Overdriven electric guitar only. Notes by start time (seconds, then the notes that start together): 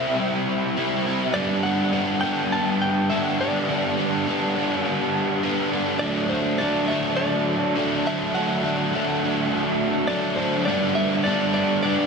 Already playing: C3 G3 C4 E4
0.77 C3 G3 C4 E4
1.06 G3 C4 E4
1.35 G2 D3 G3 B3 D4
1.65 G3 B3 D4
1.92 D3 G3 B3 D4
2.22 G3 B3 D4
3.10 D3 G3 B3 D4
3.40 G3 B3 D4
3.68 G2 D3 G3 B3 D4
3.97 G3 B3 D4
4.27 D3 G3 B3 D4
4.56 G3 B3 D4
5.43 D3 G3 B3 D4
5.72 G3 B3 D4
6.01 D3 F#3 A3 D4
6.31 F#3 A3 D4
6.60 D3 F#3 A3 D4
6.90 F#3 A3 D4
7.76 D3 F#3 A3 D4
8.06 F#3 A3 D4
8.35 D3 F#3 A3 D4
8.63 F#3 A3 D4
8.93 D3 F#3 A3 D4
9.23 F#3 A3 D4
10.09 D3 F#3 A3 D4
10.37 F#3 A3 D4
10.68 G2 D3 G3 B3 D4
11.25 D3 G3 B3 D4
11.84 G2 D3 G3 B3 D4